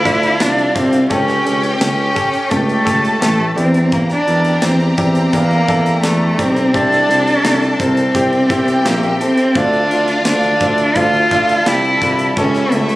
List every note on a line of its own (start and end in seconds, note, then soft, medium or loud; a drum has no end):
0.00 1.13 D3 medium
0.00 0.05 D4 medium
0.00 1.07 D4 loud
0.00 0.05 E4 medium
0.00 0.43 E4 medium
0.00 0.05 F4 medium
0.00 0.76 G4 medium
0.00 1.07 F5 loud
0.05 0.34 D2 loud
0.05 0.33 D4 loud
0.05 0.33 E4 medium
0.05 0.33 F4 loud
0.05 kick medium
0.05 closed hi-hat medium
0.23 closed hi-hat soft
0.40 0.70 C2 medium
0.40 0.68 D4 medium
0.40 0.77 D4 medium
0.40 0.68 E4 medium
0.40 0.68 F4 loud
0.40 snare loud
0.40 closed hi-hat medium
0.58 closed hi-hat soft
0.75 1.05 C2 medium
0.75 1.10 C4 medium
0.75 1.03 D4 medium
0.75 1.03 E4 medium
0.75 1.03 G4 medium
0.75 kick medium
0.75 closed hi-hat medium
0.93 closed hi-hat medium
1.09 1.40 C#2 medium
1.09 2.12 C#3 medium
1.09 1.38 C#4 medium
1.09 1.77 C#4 medium
1.09 2.83 G4 loud
1.09 1.38 G4 medium
1.09 1.38 A4 loud
1.09 2.83 G5 loud
1.09 kick medium
1.09 closed hi-hat medium
1.28 snare soft
1.28 closed hi-hat soft
1.45 1.75 C#2 medium
1.45 1.73 C#4 medium
1.45 1.73 G4 medium
1.45 1.73 A4 medium
1.45 closed hi-hat medium
1.63 closed hi-hat soft
1.79 2.10 C#2 loud
1.79 2.08 C#4 medium
1.79 2.53 C#4 medium
1.79 2.08 G4 medium
1.79 2.08 A4 medium
1.79 snare loud
1.79 closed hi-hat loud
2.15 2.43 C#4 medium
2.15 2.43 G4 medium
2.15 2.44 A4 medium
2.15 kick medium
2.15 closed hi-hat medium
2.34 closed hi-hat soft
2.50 2.80 C#2 loud
2.50 3.22 A3 loud
2.50 2.78 C#4 medium
2.50 2.78 G4 medium
2.50 2.79 A4 medium
2.50 kick medium
2.50 closed hi-hat medium
2.69 closed hi-hat soft
2.84 3.16 C#2 medium
2.84 3.13 C#4 medium
2.84 3.14 G4 medium
2.84 3.14 A4 loud
2.84 3.55 A4 medium
2.84 3.55 A5 medium
2.84 kick medium
2.84 closed hi-hat medium
3.05 closed hi-hat soft
3.20 3.51 A1 medium
3.20 3.55 A3 medium
3.20 3.49 C#4 medium
3.20 3.49 G4 medium
3.20 3.49 A4 medium
3.20 snare loud
3.20 closed hi-hat medium
3.56 4.15 E2 loud
3.56 4.58 E3 medium
3.56 3.95 C4 medium
3.56 4.13 D4 medium
3.56 4.13 E4 medium
3.56 4.13 G4 medium
3.56 6.70 G4 medium
3.56 6.70 A#5 medium
3.56 closed hi-hat medium
3.74 closed hi-hat medium
3.92 4.10 A#3 medium
3.92 kick medium
3.92 closed hi-hat medium
4.10 4.66 D4 loud
4.10 snare soft
4.10 closed hi-hat soft
4.27 4.56 E2 medium
4.27 4.55 D4 medium
4.27 4.55 E4 medium
4.27 4.55 A#4 medium
4.27 closed hi-hat medium
4.45 closed hi-hat soft
4.62 4.92 E2 loud
4.62 4.99 C4 medium
4.62 4.90 D4 medium
4.62 4.91 E4 medium
4.62 4.91 G4 medium
4.62 snare loud
4.62 closed hi-hat loud
4.80 closed hi-hat soft
4.97 5.27 E2 medium
4.97 5.35 C4 medium
4.97 5.25 D4 medium
4.97 5.26 E4 medium
4.97 5.26 G4 medium
4.97 kick medium
4.97 closed hi-hat medium
5.15 closed hi-hat soft
5.33 5.62 E2 loud
5.33 6.04 A#3 medium
5.33 5.61 D4 medium
5.33 5.61 E4 medium
5.33 5.61 A#4 medium
5.33 kick medium
5.33 closed hi-hat medium
5.51 closed hi-hat soft
5.68 5.97 E2 medium
5.68 5.96 D4 loud
5.68 5.96 E4 medium
5.68 5.96 A4 loud
5.68 kick medium
5.68 closed hi-hat medium
5.86 closed hi-hat medium
6.02 6.32 E2 medium
6.02 6.41 A3 medium
6.02 6.31 D4 medium
6.02 6.31 E4 medium
6.02 6.31 A4 medium
6.02 snare loud
6.02 closed hi-hat medium
6.38 6.68 B1 medium
6.38 6.77 C4 medium
6.38 6.66 D4 medium
6.38 6.66 E4 medium
6.38 6.66 G4 medium
6.38 kick medium
6.38 closed hi-hat medium
6.56 closed hi-hat soft
6.74 7.03 C2 medium
6.74 7.76 C3 medium
6.74 7.01 C4 medium
6.74 7.73 D4 loud
6.74 7.01 E4 medium
6.74 7.02 G4 loud
6.74 8.12 A4 medium
6.74 8.12 A5 loud
6.74 kick medium
6.74 closed hi-hat medium
6.92 snare soft
6.92 closed hi-hat soft
7.08 7.37 C2 medium
7.08 7.37 C4 medium
7.08 7.37 E4 medium
7.08 7.37 G4 medium
7.08 closed hi-hat medium
7.27 closed hi-hat soft
7.44 7.73 C2 loud
7.44 7.72 C4 medium
7.44 7.72 E4 medium
7.44 7.72 A4 medium
7.44 snare loud
7.44 closed hi-hat medium
7.62 closed hi-hat soft
7.73 7.81 D4 medium
7.79 8.09 C2 loud
7.79 8.88 C4 medium
7.79 8.07 C4 medium
7.79 8.07 E4 medium
7.79 8.07 A#4 medium
7.79 kick medium
7.79 closed hi-hat medium
7.97 closed hi-hat medium
8.15 8.44 C2 medium
8.15 8.42 C4 medium
8.15 8.42 E4 medium
8.15 9.53 G4 medium
8.15 8.43 G4 loud
8.15 9.53 G5 medium
8.15 kick medium
8.15 closed hi-hat medium
8.33 closed hi-hat soft
8.50 8.79 C2 medium
8.50 8.77 C4 medium
8.50 8.78 E4 medium
8.50 8.78 G4 loud
8.50 kick medium
8.50 closed hi-hat medium
8.68 closed hi-hat soft
8.85 9.14 A#1 medium
8.85 9.21 A#3 medium
8.85 9.12 C4 loud
8.85 9.13 E4 medium
8.85 9.13 G4 loud
8.85 snare loud
8.85 closed hi-hat medium
9.03 closed hi-hat soft
9.21 9.48 C4 medium
9.21 9.58 C4 medium
9.21 9.48 E4 medium
9.21 9.48 A4 medium
9.21 closed hi-hat medium
9.37 closed hi-hat medium
9.55 9.84 D2 loud
9.55 10.57 D3 medium
9.55 9.83 D4 medium
9.55 10.26 D4 medium
9.55 9.83 E4 medium
9.55 10.93 F4 loud
9.55 9.83 F4 loud
9.55 10.94 F5 loud
9.55 kick medium
9.55 closed hi-hat medium
9.73 closed hi-hat soft
9.91 10.19 D2 medium
9.91 10.18 D4 medium
9.91 10.19 E4 medium
9.91 10.19 F4 medium
9.91 closed hi-hat medium
10.08 closed hi-hat soft
10.25 10.55 D2 loud
10.25 10.54 D4 medium
10.25 10.99 D4 medium
10.25 10.54 E4 medium
10.25 10.54 F4 medium
10.25 snare loud
10.25 closed hi-hat loud
10.43 closed hi-hat soft
10.61 10.90 D2 medium
10.61 10.89 D4 medium
10.61 10.89 E4 medium
10.61 10.89 F4 medium
10.61 kick medium
10.61 closed hi-hat medium
10.78 closed hi-hat soft
10.96 11.25 D2 loud
10.96 11.24 D4 medium
10.96 11.24 E4 medium
10.96 11.69 F4 loud
10.96 11.24 F4 medium
10.96 12.35 A4 medium
10.96 12.35 A5 medium
10.96 kick medium
10.96 closed hi-hat medium
11.14 closed hi-hat soft
11.31 11.60 D2 medium
11.31 11.59 D4 loud
11.31 11.59 E4 loud
11.31 11.59 F4 loud
11.31 kick medium
11.31 closed hi-hat medium
11.49 closed hi-hat medium
11.66 11.95 C2 medium
11.66 11.94 D4 medium
11.66 11.94 E4 medium
11.66 12.20 E4 loud
11.66 11.94 G4 loud
11.66 snare loud
11.66 closed hi-hat medium
11.85 closed hi-hat soft
12.01 12.30 C2 medium
12.01 12.30 D4 medium
12.01 12.30 E4 medium
12.01 12.30 F4 medium
12.01 kick medium
12.01 closed hi-hat medium
12.19 closed hi-hat medium
12.37 12.66 C#2 loud
12.37 12.96 C#3 medium
12.37 12.65 C#4 loud
12.37 12.76 C#4 medium
12.37 12.96 E4 loud
12.37 12.65 G4 medium
12.37 12.65 A4 loud
12.37 12.96 E5 loud
12.37 kick medium
12.37 closed hi-hat medium
12.54 snare soft
12.54 closed hi-hat soft
12.72 12.96 C#2 medium
12.72 12.96 A3 medium
12.72 12.96 C#4 medium
12.72 12.96 G4 medium
12.72 12.96 A4 medium
12.72 closed hi-hat medium
12.89 closed hi-hat soft